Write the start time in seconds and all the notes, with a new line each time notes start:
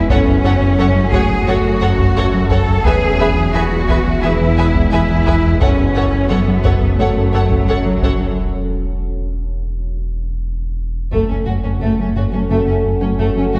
Already playing: E1 E4
0.09 F#1 F#2 F#3 A3 C#4 F#4 A4 C#5 F#5, taiko
0.28 F#2
0.44 F#2 A4 C#5 F#5
0.62 F#2
0.78 F#2 F#3 A4 C#5 F#5
0.96 F#3
1.13 F#2 A3 F#4 G#4 C#5 F#5, taiko
1.30 F#2
1.47 F#2 F#4 A4 C#5 F#5
1.65 F#2
1.82 F#2 A4 C#5 F#5
1.99 F#2, taiko
2.16 F#2 A4 C#5 F#5
2.34 F#3
2.51 F#2 A4 C#5 F#5, taiko
2.68 F#2
2.84 E1 E2 G#3 B3 E4 G#4 B4 E5 G#5, taiko
3.03 E2
3.19 E2 G#4 B4 E5 G#5
3.37 E2
3.54 E2 E3 F#4 G#4 B4 E5 G#5
3.72 E3
3.89 E2 G#4 B4 E5 G#5, taiko
4.07 E2
4.23 E2 E4 G#4 B4 E5 G#5
4.41 E2
4.58 E2 G#4 B4 E5 G#5
4.76 E2, taiko
4.92 E2 E4 G#4 B4 E5 G#5
5.10 E3
5.26 E2 G#4 B4 E5 G#5, taiko
5.45 E2
5.61 F#1 F#2 F#3 C#4 F#4 A4 C#5 F#5, taiko
5.79 F#2
5.96 F#2 A4 C#5 F#5
6.13 F#2
6.29 F#2 F#3 B3 A4 C#5 F#5
6.48 F#3
6.64 F#2 A4 C#5 F#5, taiko
6.82 F#2
6.99 F#2 A3 A4 C#5 F#5
7.17 F#2
7.34 F#2 A4 C#5 F#5
7.51 F#2, taiko
7.68 F#2 F#3 A4 C#5 F#5
7.86 F#3
8.02 F#2 A4 C#5 F#5, taiko
8.21 F#2
8.38 E1
11.13 F#1 F#2 F#3 A3 C#4 F#4 A4, taiko
11.30 F#2 A3 C#4 A4
11.47 F#1 F#2 A3 F#4 C#5
11.64 F#2 A3 C#4 A4
11.82 F#1 F#2 A3 F#4
11.99 F#2 F#3 A3 C#4 A4
12.16 F#1 F#2 A3 F#4 C#5
12.33 F#2 F#3 A3 C#4 A4
12.50 F#1 F#2 A3 F#4
12.67 F#2 A3 C#4 A4
12.84 F#2
13.01 F#2 F#3 A3 C#4 A4
13.19 F#1 F#2 A3 F#4
13.36 F#2 F#3 A3 C#4 A4
13.54 F#1 F#2 F#3 A3 F#4 C#5